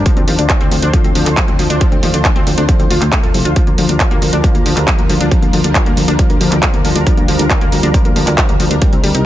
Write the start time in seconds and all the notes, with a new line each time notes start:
Already playing: D4
0.06 F3 A3 F4 C5, kick, closed hi-hat
0.17 D2 C4, closed hi-hat
0.28 D#2 F3, open hi-hat
0.39 D2 D4, closed hi-hat
0.50 F3, kick, clap, closed hi-hat
0.61 D2 C4, closed hi-hat
0.71 D2 F3, open hi-hat
0.82 D2 D4, closed hi-hat
0.93 F3, kick, closed hi-hat
1.04 D2 C4, closed hi-hat
1.15 D2 F3, open hi-hat
1.26 D2 D4, clap, closed hi-hat
1.37 F3, kick, clap, closed hi-hat
1.48 D2 C4, closed hi-hat
1.59 D2 F3, open hi-hat
1.70 D2 D4, closed hi-hat
1.81 F3, kick, closed hi-hat
1.92 D2 C4, closed hi-hat
2.03 D#2 F3, open hi-hat
2.14 D2 D4, closed hi-hat
2.25 F3, kick, clap, closed hi-hat
2.36 D2 C4, closed hi-hat
2.47 D2 F3, open hi-hat
2.58 D2 D4, closed hi-hat
2.69 F3, kick, closed hi-hat
2.80 D2 C4, closed hi-hat
2.90 D2 F4, open hi-hat
3.01 D2 A3, clap, closed hi-hat
3.12 A3, kick, clap, closed hi-hat
3.23 D1 A4, closed hi-hat
3.34 C2 F3, open hi-hat
3.45 D2 F4, closed hi-hat
3.56 F3 G3 D4 A#4, kick, closed hi-hat
3.67 D2 A#3, closed hi-hat
3.78 D2 F3, open hi-hat
3.89 D2 D4, closed hi-hat
4.00 F3, kick, clap, closed hi-hat
4.11 D2 A#3, closed hi-hat
4.22 D2 F3, open hi-hat
4.33 D2 D4, closed hi-hat
4.44 F3, kick, closed hi-hat
4.55 D2 A#3, closed hi-hat
4.66 D2 F3, open hi-hat
4.77 D2 D4, clap, closed hi-hat
4.88 F3, kick, clap, closed hi-hat
4.99 D2 A#3, closed hi-hat
5.09 D2 F3, open hi-hat
5.21 D2 D4, closed hi-hat
5.31 F3, kick, closed hi-hat
5.42 D2 A#3, closed hi-hat
5.53 D2 F3, open hi-hat
5.64 D2 D4, closed hi-hat
5.75 F3, kick, clap, closed hi-hat
5.86 D2 A#3, closed hi-hat
5.97 D2 F3, open hi-hat
6.08 D2 D4, closed hi-hat
6.19 F3, kick, closed hi-hat
6.30 D2 A#3, closed hi-hat
6.41 D2 F3, open hi-hat
6.52 D2 D4, clap, closed hi-hat
6.63 F3, kick, clap, closed hi-hat
6.74 D2 A#3, closed hi-hat
6.85 D2 F3, open hi-hat
6.96 D2 D4, closed hi-hat
7.07 F3, kick, closed hi-hat
7.17 D2 A#3, closed hi-hat
7.28 D2 F3, open hi-hat
7.39 D2 D4, closed hi-hat
7.50 F3, kick, clap, closed hi-hat
7.61 D2 A#3, closed hi-hat
7.72 D2 F3, open hi-hat
7.83 D2 D4, closed hi-hat
7.94 F3, kick, closed hi-hat
8.05 D2 A#3, closed hi-hat
8.16 D2 F3, open hi-hat
8.27 D2 D4, clap, closed hi-hat
8.38 F3, kick, clap, closed hi-hat
8.49 D2 A#3, closed hi-hat
8.60 D2 F3, open hi-hat
8.71 D2 D4, closed hi-hat
8.82 G3 C4 D#4, kick, closed hi-hat
8.93 C2 C4, closed hi-hat
9.03 D2 G3, open hi-hat
9.14 C2 D#4, closed hi-hat